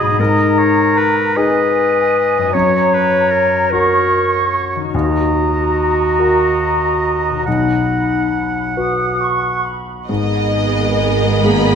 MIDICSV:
0, 0, Header, 1, 11, 480
1, 0, Start_track
1, 0, Key_signature, 5, "minor"
1, 0, Tempo, 784314
1, 116, Time_signature, 6, 3, 24, 8
1, 2515, Tempo, 821918
1, 3475, Tempo, 860832
1, 5395, Tempo, 887574
1, 6776, End_track
2, 0, Start_track
2, 0, Title_t, "Flute section"
2, 0, Program_c, 0, 73
2, 0, Note_on_c, 0, 83, 50
2, 121, Note_off_c, 0, 83, 0
2, 127, Note_on_c, 0, 82, 48
2, 812, Note_off_c, 0, 82, 0
2, 833, Note_on_c, 0, 80, 45
2, 1553, Note_off_c, 0, 80, 0
2, 1563, Note_on_c, 0, 82, 49
2, 2261, Note_off_c, 0, 82, 0
2, 2274, Note_on_c, 0, 85, 44
2, 2835, Note_off_c, 0, 85, 0
2, 2995, Note_on_c, 0, 82, 48
2, 4405, Note_off_c, 0, 82, 0
2, 4429, Note_on_c, 0, 83, 38
2, 5091, Note_off_c, 0, 83, 0
2, 5159, Note_on_c, 0, 87, 37
2, 5382, Note_off_c, 0, 87, 0
2, 5394, Note_on_c, 0, 85, 39
2, 5635, Note_on_c, 0, 83, 33
2, 5636, Note_off_c, 0, 85, 0
2, 5875, Note_off_c, 0, 83, 0
2, 6776, End_track
3, 0, Start_track
3, 0, Title_t, "Violin section"
3, 0, Program_c, 1, 48
3, 5869, Note_on_c, 1, 75, 55
3, 6578, Note_off_c, 1, 75, 0
3, 6608, Note_on_c, 1, 83, 66
3, 6776, Note_off_c, 1, 83, 0
3, 6776, End_track
4, 0, Start_track
4, 0, Title_t, "Oboe"
4, 0, Program_c, 2, 68
4, 0, Note_on_c, 2, 75, 46
4, 92, Note_off_c, 2, 75, 0
4, 117, Note_on_c, 2, 75, 47
4, 359, Note_on_c, 2, 73, 47
4, 368, Note_off_c, 2, 75, 0
4, 596, Note_on_c, 2, 71, 52
4, 605, Note_off_c, 2, 73, 0
4, 837, Note_on_c, 2, 75, 46
4, 847, Note_off_c, 2, 71, 0
4, 1555, Note_on_c, 2, 73, 40
4, 1564, Note_off_c, 2, 75, 0
4, 1797, Note_on_c, 2, 71, 44
4, 1806, Note_off_c, 2, 73, 0
4, 2030, Note_on_c, 2, 70, 45
4, 2040, Note_off_c, 2, 71, 0
4, 2270, Note_off_c, 2, 70, 0
4, 2282, Note_on_c, 2, 73, 44
4, 2907, Note_off_c, 2, 73, 0
4, 3006, Note_on_c, 2, 75, 35
4, 4410, Note_off_c, 2, 75, 0
4, 4428, Note_on_c, 2, 78, 30
4, 5668, Note_off_c, 2, 78, 0
4, 6776, End_track
5, 0, Start_track
5, 0, Title_t, "Violin section"
5, 0, Program_c, 3, 48
5, 5878, Note_on_c, 3, 75, 46
5, 5883, Note_on_c, 3, 70, 42
5, 6776, Note_off_c, 3, 70, 0
5, 6776, Note_off_c, 3, 75, 0
5, 6776, End_track
6, 0, Start_track
6, 0, Title_t, "Clarinet"
6, 0, Program_c, 4, 71
6, 0, Note_on_c, 4, 68, 69
6, 120, Note_on_c, 4, 70, 66
6, 130, Note_off_c, 4, 68, 0
6, 830, Note_on_c, 4, 71, 68
6, 839, Note_off_c, 4, 70, 0
6, 1544, Note_off_c, 4, 71, 0
6, 1548, Note_on_c, 4, 73, 73
6, 2269, Note_on_c, 4, 70, 57
6, 2278, Note_off_c, 4, 73, 0
6, 2756, Note_off_c, 4, 70, 0
6, 3005, Note_on_c, 4, 66, 67
6, 4410, Note_off_c, 4, 66, 0
6, 4435, Note_on_c, 4, 63, 44
6, 5141, Note_off_c, 4, 63, 0
6, 6776, End_track
7, 0, Start_track
7, 0, Title_t, "Grand piano"
7, 0, Program_c, 5, 0
7, 0, Control_c, 5, 64, 127
7, 0, Note_on_c, 5, 35, 41
7, 0, Note_on_c, 5, 63, 34
7, 0, Note_on_c, 5, 66, 35
7, 87, Note_off_c, 5, 35, 0
7, 92, Note_off_c, 5, 63, 0
7, 93, Note_off_c, 5, 66, 0
7, 118, Note_on_c, 5, 44, 44
7, 125, Control_c, 5, 64, 0
7, 213, Control_c, 5, 64, 127
7, 835, Note_on_c, 5, 63, 34
7, 838, Note_on_c, 5, 68, 41
7, 1529, Note_off_c, 5, 44, 0
7, 1530, Note_off_c, 5, 63, 0
7, 1531, Note_off_c, 5, 68, 0
7, 1558, Note_on_c, 5, 42, 41
7, 1564, Control_c, 5, 64, 0
7, 1674, Control_c, 5, 64, 127
7, 2281, Note_on_c, 5, 66, 32
7, 2281, Note_on_c, 5, 70, 34
7, 2975, Note_off_c, 5, 42, 0
7, 2978, Note_off_c, 5, 66, 0
7, 2978, Note_off_c, 5, 70, 0
7, 3002, Note_on_c, 5, 39, 43
7, 3006, Control_c, 5, 64, 0
7, 3114, Control_c, 5, 64, 127
7, 3719, Note_on_c, 5, 66, 28
7, 3723, Note_on_c, 5, 70, 32
7, 4408, Note_off_c, 5, 39, 0
7, 4410, Note_off_c, 5, 66, 0
7, 4411, Note_off_c, 5, 70, 0
7, 4434, Note_on_c, 5, 35, 32
7, 4438, Control_c, 5, 64, 0
7, 4540, Control_c, 5, 64, 127
7, 5157, Note_on_c, 5, 66, 23
7, 5158, Note_on_c, 5, 71, 24
7, 5856, Note_off_c, 5, 66, 0
7, 5857, Note_off_c, 5, 35, 0
7, 5857, Note_off_c, 5, 71, 0
7, 5880, Note_on_c, 5, 44, 36
7, 5887, Control_c, 5, 64, 0
7, 5997, Control_c, 5, 64, 127
7, 6610, Note_on_c, 5, 58, 35
7, 6610, Note_on_c, 5, 68, 31
7, 6776, Note_off_c, 5, 44, 0
7, 6776, Note_off_c, 5, 58, 0
7, 6776, Note_off_c, 5, 68, 0
7, 6776, End_track
8, 0, Start_track
8, 0, Title_t, "Viola section"
8, 0, Program_c, 6, 48
8, 5878, Note_on_c, 6, 59, 43
8, 5880, Note_on_c, 6, 68, 44
8, 6776, Note_off_c, 6, 59, 0
8, 6776, Note_off_c, 6, 68, 0
8, 6776, End_track
9, 0, Start_track
9, 0, Title_t, "Harp"
9, 0, Program_c, 7, 46
9, 0, Note_on_c, 7, 47, 47
9, 0, Note_on_c, 7, 66, 35
9, 10, Note_on_c, 7, 44, 47
9, 39, Note_on_c, 7, 59, 40
9, 64, Note_on_c, 7, 63, 38
9, 83, Note_off_c, 7, 47, 0
9, 91, Note_on_c, 7, 68, 38
9, 124, Note_off_c, 7, 66, 0
9, 1453, Note_on_c, 7, 42, 42
9, 1477, Note_on_c, 7, 61, 38
9, 1506, Note_on_c, 7, 66, 38
9, 1519, Note_off_c, 7, 44, 0
9, 1531, Note_on_c, 7, 82, 37
9, 1533, Note_off_c, 7, 59, 0
9, 1546, Note_off_c, 7, 63, 0
9, 1559, Note_off_c, 7, 68, 0
9, 2891, Note_on_c, 7, 51, 39
9, 2918, Note_on_c, 7, 63, 31
9, 2938, Note_off_c, 7, 66, 0
9, 2945, Note_on_c, 7, 66, 31
9, 2968, Note_off_c, 7, 42, 0
9, 2972, Note_on_c, 7, 70, 33
9, 2979, Note_off_c, 7, 61, 0
9, 3836, Note_off_c, 7, 82, 0
9, 4335, Note_on_c, 7, 47, 34
9, 4355, Note_off_c, 7, 63, 0
9, 4361, Note_on_c, 7, 63, 25
9, 4378, Note_off_c, 7, 66, 0
9, 4384, Note_on_c, 7, 66, 25
9, 4397, Note_off_c, 7, 51, 0
9, 4410, Note_on_c, 7, 75, 27
9, 4436, Note_off_c, 7, 70, 0
9, 5849, Note_off_c, 7, 47, 0
9, 5873, Note_off_c, 7, 66, 0
9, 5877, Note_on_c, 7, 44, 46
9, 6115, Note_on_c, 7, 68, 34
9, 6502, Note_off_c, 7, 63, 0
9, 6549, Note_off_c, 7, 75, 0
9, 6601, Note_on_c, 7, 59, 38
9, 6776, Note_off_c, 7, 44, 0
9, 6776, Note_off_c, 7, 59, 0
9, 6776, Note_off_c, 7, 68, 0
9, 6776, End_track
10, 0, Start_track
10, 0, Title_t, "Cello section"
10, 0, Program_c, 8, 48
10, 5880, Note_on_c, 8, 44, 44
10, 6776, Note_off_c, 8, 44, 0
10, 6776, End_track
11, 0, Start_track
11, 0, Title_t, "Double bass section"
11, 0, Program_c, 10, 48
11, 5879, Note_on_c, 10, 32, 42
11, 6776, Note_off_c, 10, 32, 0
11, 6776, End_track
0, 0, End_of_file